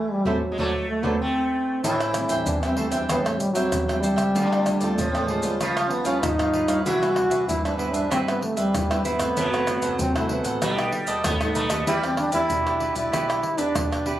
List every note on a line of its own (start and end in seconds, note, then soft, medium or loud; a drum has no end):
0.00 0.47 E3 medium
0.00 0.14 A3 medium
0.12 0.27 G3 medium
0.25 0.39 A1 medium
0.25 0.89 F#3 medium
0.25 0.36 G3 medium
0.25 0.36 A3 medium
0.25 0.36 C4 medium
0.25 0.37 A4 medium
0.25 0.37 C5 medium
0.25 0.37 E5 medium
0.25 surdo medium
0.52 0.59 G#3 medium
0.58 0.70 D2 medium
0.58 0.68 D3 medium
0.58 0.68 F#3 medium
0.58 0.68 A3 medium
0.58 1.21 A3 medium
0.58 0.69 A4 medium
0.58 0.69 C5 medium
0.58 0.69 D5 medium
0.58 surdo medium
0.90 1.05 A3 medium
1.03 1.16 D2 medium
1.03 1.14 D3 loud
1.03 1.14 F#3 medium
1.03 1.14 A3 medium
1.03 1.20 B3 medium
1.03 1.15 A4 medium
1.03 1.15 C5 medium
1.03 1.15 D5 medium
1.03 surdo medium
1.21 1.80 A3 medium
1.21 1.80 C4 medium
1.84 2.24 A1 medium
1.84 2.44 A2 medium
1.84 3.49 E3 medium
1.84 2.47 E4 medium
1.84 1.99 A4 medium
1.84 1.99 C5 medium
1.84 1.99 E5 medium
1.84 1.99 G5 medium
1.84 pandeiro medium
1.84 maracas medium
1.84 surdo medium
2.00 2.14 C5 soft
2.00 2.14 E5 soft
2.00 2.14 G5 soft
2.00 pandeiro soft
2.00 tamborim medium
2.00 maracas soft
2.14 2.57 G3 soft
2.14 2.57 C4 medium
2.14 2.57 D4 medium
2.14 muted cavaquinho stroke soft
2.14 pandeiro medium
2.14 tamborim medium
2.14 maracas medium
2.29 2.43 A1 medium
2.29 2.61 C5 medium
2.29 2.61 E5 medium
2.29 2.61 G5 medium
2.29 pandeiro medium
2.29 maracas medium
2.29 surdo soft
2.45 2.86 E2 medium
2.45 3.07 E3 medium
2.45 2.62 D4 medium
2.45 pandeiro medium
2.45 maracas medium
2.45 surdo medium
2.63 2.90 G3 medium
2.63 2.76 C4 medium
2.63 2.90 C4 medium
2.63 2.90 D4 medium
2.63 2.76 C5 soft
2.63 2.77 E5 soft
2.63 2.78 G5 soft
2.63 pandeiro soft
2.63 tamborim medium
2.63 maracas soft
2.77 2.90 A3 medium
2.77 2.92 A4 soft
2.77 2.92 C5 medium
2.77 2.91 E5 medium
2.77 2.90 G5 medium
2.77 pandeiro medium
2.91 3.06 E2 medium
2.91 3.04 G3 medium
2.91 2.99 C4 medium
2.91 3.04 C4 medium
2.91 3.05 D4 medium
2.91 3.08 C5 medium
2.91 3.07 E5 medium
2.91 3.07 G5 medium
2.91 pandeiro medium
2.91 maracas medium
2.91 surdo soft
3.09 3.36 E2 medium
3.09 3.70 A2 medium
3.09 3.39 G3 medium
3.09 3.24 B3 medium
3.09 3.40 C4 medium
3.09 3.40 D4 medium
3.09 3.24 A4 medium
3.09 3.24 C5 medium
3.09 3.24 E5 medium
3.09 3.24 G5 medium
3.09 pandeiro medium
3.09 tamborim medium
3.09 maracas medium
3.09 surdo medium
3.25 3.40 A3 medium
3.25 3.39 C5 soft
3.25 3.39 E5 soft
3.25 3.39 G5 soft
3.25 pandeiro soft
3.25 tamborim medium
3.25 maracas soft
3.38 3.53 G3 medium
3.38 muted cavaquinho stroke soft
3.38 pandeiro medium
3.38 maracas medium
3.49 4.35 D3 medium
3.49 3.99 F#3 medium
3.55 3.82 G3 medium
3.55 3.83 C4 medium
3.55 3.83 D4 medium
3.55 3.87 C5 medium
3.55 3.86 E5 medium
3.55 3.86 G5 medium
3.55 pandeiro medium
3.55 maracas medium
3.55 surdo soft
3.72 4.12 E2 medium
3.72 4.32 E3 medium
3.72 pandeiro medium
3.72 tamborim medium
3.72 maracas medium
3.72 surdo medium
3.88 4.31 G3 medium
3.88 4.31 C4 medium
3.88 4.31 D4 medium
3.88 4.02 C5 soft
3.88 4.02 E5 soft
3.88 4.03 G5 soft
3.88 pandeiro soft
3.88 tamborim medium
3.88 maracas soft
4.00 4.97 G3 medium
4.00 4.17 A4 soft
4.00 4.17 C5 medium
4.00 4.16 E5 medium
4.00 4.15 G5 medium
4.00 pandeiro medium
4.00 maracas medium
4.16 4.31 C#2 medium
4.16 4.33 C5 medium
4.16 4.32 E5 medium
4.16 4.32 G5 medium
4.16 pandeiro medium
4.16 tamborim medium
4.16 maracas medium
4.16 surdo soft
4.35 4.75 D2 medium
4.35 4.95 D3 medium
4.35 4.94 D3 medium
4.35 4.64 A3 medium
4.35 4.64 C4 medium
4.35 4.65 F4 medium
4.35 4.50 F4 medium
4.35 4.50 A4 medium
4.35 4.50 C5 medium
4.35 4.50 D5 medium
4.35 pandeiro medium
4.35 maracas medium
4.35 surdo medium
4.52 4.66 A4 soft
4.52 4.66 C5 soft
4.52 4.66 D5 medium
4.52 pandeiro soft
4.52 tamborim medium
4.52 maracas soft
4.66 muted cavaquinho stroke soft
4.66 pandeiro medium
4.66 tamborim medium
4.66 maracas medium
4.66 surdo soft
4.80 4.94 D2 medium
4.80 5.08 A3 medium
4.80 5.08 C4 medium
4.80 5.08 F4 medium
4.80 5.13 A4 medium
4.80 5.12 C5 medium
4.80 5.12 D5 medium
4.80 pandeiro medium
4.80 maracas medium
4.80 surdo soft
4.96 5.38 A1 medium
4.96 5.58 A2 medium
4.96 5.61 F3 medium
4.96 5.10 A3 medium
4.96 pandeiro medium
4.96 maracas medium
4.96 surdo medium
5.11 5.40 A3 medium
5.11 5.27 C4 medium
5.11 5.40 C4 medium
5.11 pandeiro soft
5.11 tamborim medium
5.11 maracas soft
5.15 5.41 F4 medium
5.15 5.29 A4 soft
5.15 5.29 C5 soft
5.15 5.29 D5 soft
5.25 5.63 G#3 medium
5.25 5.44 F4 medium
5.25 pandeiro medium
5.30 5.44 A4 soft
5.30 5.43 C5 soft
5.30 5.43 D5 medium
5.43 5.57 D2 medium
5.43 6.02 G3 medium
5.43 6.02 B3 medium
5.43 6.02 F4 medium
5.43 5.60 A4 medium
5.43 5.59 C5 medium
5.43 5.59 D5 medium
5.43 pandeiro medium
5.43 maracas medium
5.43 surdo soft
5.60 5.87 C#2 medium
5.60 6.20 C#3 medium
5.60 6.83 F3 medium
5.60 5.75 F4 medium
5.60 5.76 B4 medium
5.60 5.76 C#5 medium
5.60 5.76 F5 medium
5.60 pandeiro medium
5.60 tamborim medium
5.60 maracas medium
5.60 surdo medium
5.77 5.91 B4 soft
5.77 5.92 C#5 soft
5.77 5.91 F5 soft
5.77 pandeiro soft
5.77 tamborim medium
5.77 maracas soft
5.87 6.06 B3 medium
5.87 5.91 C#4 medium
5.87 pandeiro medium
5.92 muted cavaquinho stroke soft
6.04 6.33 G3 medium
6.04 6.33 B3 medium
6.04 6.21 C#4 medium
6.04 6.33 F4 medium
6.04 6.38 B4 medium
6.04 6.37 C#5 medium
6.04 6.37 F5 medium
6.04 pandeiro medium
6.04 maracas medium
6.04 surdo soft
6.21 6.63 G#1 medium
6.21 6.83 G#2 medium
6.21 6.87 D#4 loud
6.21 pandeiro medium
6.21 tamborim medium
6.21 maracas medium
6.21 surdo loud
6.39 6.81 G3 medium
6.39 6.82 B3 medium
6.39 6.82 F4 medium
6.39 6.54 B4 soft
6.39 6.54 C#5 soft
6.39 6.54 F5 soft
6.39 pandeiro soft
6.39 tamborim medium
6.39 maracas soft
6.53 6.69 F4 medium
6.53 6.69 B4 medium
6.53 6.68 C#5 medium
6.53 6.68 F5 medium
6.53 pandeiro medium
6.68 6.82 G2 medium
6.68 6.85 B4 medium
6.68 6.84 C#5 medium
6.68 6.84 F5 medium
6.68 pandeiro medium
6.68 tamborim medium
6.68 maracas medium
6.68 surdo soft
6.85 7.25 C2 medium
6.85 7.46 C3 medium
6.85 9.45 E3 medium
6.85 6.96 G3 medium
6.85 6.96 B3 medium
6.85 7.01 E4 medium
6.85 6.96 E4 medium
6.85 7.47 F#4 loud
6.85 7.01 B4 medium
6.85 7.01 C5 medium
6.85 7.01 E5 medium
6.85 pandeiro medium
6.85 maracas medium
6.85 surdo medium
7.02 7.13 G3 medium
7.02 7.13 B3 medium
7.02 7.13 E4 medium
7.02 7.16 B4 soft
7.02 7.15 C5 soft
7.02 7.16 E5 soft
7.02 pandeiro soft
7.02 tamborim medium
7.02 maracas soft
7.16 7.60 G3 medium
7.16 7.59 B3 medium
7.16 7.60 E4 medium
7.16 muted cavaquinho stroke soft
7.16 pandeiro medium
7.16 tamborim medium
7.16 surdo soft
7.30 7.45 C2 medium
7.30 7.62 B4 medium
7.30 7.62 C5 medium
7.30 7.62 E5 medium
7.30 pandeiro medium
7.30 maracas medium
7.30 surdo soft
7.48 7.89 G2 medium
7.48 8.09 G2 soft
7.48 7.63 E4 loud
7.48 pandeiro medium
7.48 maracas medium
7.48 surdo loud
7.65 8.07 G3 medium
7.65 8.07 B3 medium
7.65 7.77 D4 medium
7.65 8.08 E4 medium
7.65 7.78 B4 soft
7.65 7.77 C5 soft
7.65 7.79 E5 soft
7.65 pandeiro soft
7.65 tamborim medium
7.65 maracas soft
7.78 7.94 B3 medium
7.78 7.93 E4 medium
7.78 7.93 B4 medium
7.78 7.94 C5 soft
7.78 7.92 E5 medium
7.78 pandeiro medium
7.92 8.08 G2 medium
7.92 8.10 D4 medium
7.92 8.09 B4 medium
7.92 8.10 C5 medium
7.92 8.09 E5 medium
7.92 pandeiro medium
7.92 maracas medium
7.92 surdo soft
8.10 8.38 G2 medium
8.10 8.72 C3 medium
8.10 8.70 G3 medium
8.10 8.70 B3 medium
8.10 8.19 C4 medium
8.10 8.25 E4 medium
8.10 8.70 E4 medium
8.10 8.26 B4 medium
8.10 8.26 C5 medium
8.10 8.26 E5 medium
8.10 pandeiro medium
8.10 tamborim medium
8.10 maracas medium
8.10 surdo medium
8.28 8.42 B3 medium
8.28 8.40 B4 soft
8.28 8.40 C5 soft
8.28 8.41 E5 soft
8.28 pandeiro soft
8.28 tamborim medium
8.28 maracas soft
8.41 8.59 A3 medium
8.41 muted cavaquinho stroke soft
8.41 pandeiro medium
8.57 9.05 G3 medium
8.57 8.88 B4 medium
8.57 8.89 C5 medium
8.57 8.88 E5 medium
8.57 pandeiro medium
8.57 maracas medium
8.57 surdo soft
8.74 9.14 G2 medium
8.74 9.34 G2 medium
8.74 8.84 G3 medium
8.74 8.84 B3 medium
8.74 8.84 E4 medium
8.74 pandeiro medium
8.74 tamborim medium
8.74 maracas medium
8.74 surdo loud
8.90 9.17 G3 medium
8.90 9.17 B3 medium
8.90 9.17 E4 medium
8.90 9.05 B4 soft
8.90 9.04 C5 soft
8.90 9.04 E5 medium
8.90 pandeiro soft
8.90 tamborim medium
8.90 maracas soft
9.05 9.95 B3 loud
9.05 9.20 E4 medium
9.05 9.19 B4 soft
9.05 9.20 C5 medium
9.05 9.18 E5 medium
9.05 pandeiro medium
9.05 maracas medium
9.19 9.34 G1 medium
9.19 9.47 E3 medium
9.19 9.47 A3 medium
9.19 9.47 C4 medium
9.19 9.35 B4 medium
9.19 9.36 C5 medium
9.19 9.35 E5 medium
9.19 pandeiro medium
9.19 tamborim medium
9.19 maracas medium
9.19 surdo soft
9.37 9.77 F#1 medium
9.37 9.96 F#2 medium
9.37 10.62 F#3 medium
9.37 9.51 E4 medium
9.37 9.52 A4 medium
9.37 9.52 C5 medium
9.37 9.52 F#5 medium
9.37 pandeiro medium
9.37 maracas medium
9.37 surdo medium
9.53 9.64 E3 medium
9.53 9.64 A3 medium
9.53 9.64 C4 medium
9.53 9.67 A4 soft
9.53 9.68 C5 soft
9.53 9.67 F#5 medium
9.53 pandeiro soft
9.53 tamborim medium
9.53 maracas soft
9.67 9.97 E3 medium
9.67 9.97 A3 medium
9.67 9.98 C4 medium
9.67 muted cavaquinho stroke soft
9.67 pandeiro medium
9.67 tamborim medium
9.67 maracas medium
9.82 9.96 F#1 medium
9.82 10.14 A4 medium
9.82 10.14 C5 medium
9.82 10.13 F#5 medium
9.82 pandeiro medium
9.82 maracas medium
9.82 surdo soft
9.99 10.39 C2 medium
9.99 10.59 F#2 soft
9.99 10.19 C4 loud
9.99 pandeiro medium
9.99 maracas medium
9.99 surdo loud
10.16 10.58 E3 medium
10.16 10.58 A3 medium
10.16 10.58 C4 medium
10.16 10.33 E4 medium
10.16 10.30 A4 soft
10.16 10.31 C5 soft
10.16 10.31 F#5 medium
10.16 pandeiro soft
10.16 tamborim medium
10.16 maracas soft
10.29 11.26 B3 medium
10.29 10.45 E4 soft
10.29 10.46 A4 soft
10.29 10.45 C5 medium
10.29 10.44 F#5 medium
10.29 pandeiro medium
10.44 10.58 A1 medium
10.44 10.61 A4 medium
10.44 10.61 C5 medium
10.44 10.60 F#5 medium
10.44 pandeiro medium
10.44 maracas medium
10.44 surdo soft
10.62 10.89 B1 medium
10.62 11.22 B2 medium
10.62 11.24 G3 medium
10.62 11.03 G3 soft
10.62 11.03 A3 medium
10.62 10.77 D#4 medium
10.62 11.03 D#4 medium
10.62 10.77 A4 medium
10.62 10.78 B4 medium
10.62 10.77 D#5 medium
10.62 pandeiro medium
10.62 tamborim medium
10.62 maracas medium
10.62 surdo medium
10.78 10.91 A4 soft
10.78 10.92 B4 soft
10.78 10.92 D#5 soft
10.78 pandeiro soft
10.78 tamborim medium
10.78 maracas soft
10.92 muted cavaquinho stroke soft
10.92 pandeiro medium
11.07 11.39 A4 medium
11.07 11.39 B4 medium
11.07 11.38 D#5 medium
11.07 pandeiro medium
11.07 maracas medium
11.07 surdo soft
11.24 11.38 F#2 medium
11.24 11.85 F#2 medium
11.24 11.35 G3 medium
11.24 11.35 A3 medium
11.24 11.54 B3 medium
11.24 11.35 D#4 medium
11.24 pandeiro medium
11.24 tamborim medium
11.24 maracas medium
11.24 surdo medium
11.41 11.54 A1 medium
11.41 11.67 G3 medium
11.41 11.68 A3 medium
11.41 11.68 D#4 medium
11.41 11.54 A4 soft
11.41 11.55 B4 soft
11.41 11.55 D#5 soft
11.41 pandeiro soft
11.41 tamborim medium
11.41 maracas soft
11.55 11.69 B1 medium
11.55 11.85 A3 medium
11.55 11.70 D#4 medium
11.55 11.69 A4 medium
11.55 11.68 B4 medium
11.55 11.68 D#5 soft
11.55 pandeiro medium
11.55 maracas medium
11.69 11.85 D#2 medium
11.69 11.98 B3 medium
11.69 11.98 D4 medium
11.69 11.98 G4 medium
11.69 11.85 A4 medium
11.69 11.85 B4 medium
11.69 11.85 D#5 medium
11.69 pandeiro medium
11.69 tamborim medium
11.69 maracas medium
11.69 surdo soft
11.87 12.27 E2 medium
11.87 12.48 E3 medium
11.87 14.20 G3 medium
11.87 12.02 E4 medium
11.87 12.02 E4 loud
11.87 12.02 G4 medium
11.87 12.02 B4 medium
11.87 12.02 D5 medium
11.87 pandeiro medium
11.87 maracas medium
11.87 surdo medium
12.03 12.18 C4 medium
12.03 12.16 G4 soft
12.03 12.17 B4 soft
12.03 12.17 D5 medium
12.03 pandeiro soft
12.03 tamborim medium
12.03 maracas soft
12.17 12.34 D4 medium
12.17 muted cavaquinho stroke soft
12.17 pandeiro medium
12.17 tamborim medium
12.32 12.47 E2 medium
12.32 12.61 B3 medium
12.32 12.61 D4 medium
12.32 12.93 E4 loud
12.32 12.64 G4 medium
12.32 12.61 G4 medium
12.32 12.64 B4 medium
12.32 12.63 D5 medium
12.32 pandeiro medium
12.32 maracas medium
12.32 surdo soft
12.50 12.90 B1 medium
12.50 13.10 B2 medium
12.50 pandeiro medium
12.50 maracas medium
12.50 surdo medium
12.66 13.08 B3 medium
12.66 13.09 D4 medium
12.66 13.09 G4 medium
12.66 12.79 G4 soft
12.66 12.80 B4 soft
12.66 12.80 D5 soft
12.66 pandeiro soft
12.66 tamborim medium
12.66 maracas soft
12.80 12.95 E4 soft
12.80 12.95 G4 medium
12.80 12.95 B4 medium
12.80 12.94 D5 medium
12.80 pandeiro medium
12.95 13.09 B1 medium
12.95 13.61 E4 loud
12.95 13.12 G4 medium
12.95 13.11 B4 medium
12.95 13.11 D5 medium
12.95 pandeiro medium
12.95 maracas medium
12.95 surdo soft
13.12 13.40 B1 medium
13.12 13.72 E3 medium
13.12 13.55 B3 medium
13.12 13.55 D4 medium
13.12 13.27 E4 medium
13.12 13.27 G4 medium
13.12 13.55 G4 medium
13.12 13.28 B4 medium
13.12 13.27 D5 medium
13.12 pandeiro medium
13.12 tamborim medium
13.12 maracas medium
13.12 surdo medium
13.28 13.41 G4 soft
13.28 13.42 B4 soft
13.28 13.42 D5 soft
13.28 pandeiro soft
13.28 tamborim medium
13.28 maracas soft
13.42 muted cavaquinho stroke soft
13.42 pandeiro medium
13.57 14.01 B3 medium
13.57 14.01 D4 medium
13.57 14.20 D4 loud
13.57 13.89 G4 medium
13.57 14.01 G4 medium
13.57 13.89 B4 medium
13.57 13.89 D5 medium
13.57 pandeiro medium
13.57 maracas medium
13.57 surdo soft
13.75 14.15 B1 medium
13.75 14.20 B2 medium
13.75 pandeiro medium
13.75 tamborim medium
13.75 maracas medium
13.75 surdo loud
13.91 14.05 G4 soft
13.91 14.05 B4 soft
13.91 14.06 D5 soft
13.91 pandeiro soft
13.91 tamborim medium
13.91 maracas soft
14.06 14.20 B3 medium
14.06 14.20 D4 medium
14.06 14.20 E4 soft
14.06 14.20 G4 soft
14.06 14.20 G4 medium
14.06 14.19 B4 medium
14.06 14.18 D5 medium
14.06 pandeiro medium